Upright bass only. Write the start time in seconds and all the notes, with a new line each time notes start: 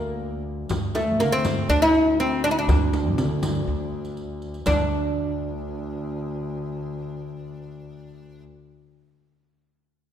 Already playing: D2
0.70 D2
1.20 D3
1.69 D2
2.68 D2
3.18 D3
3.68 D2
4.67 D2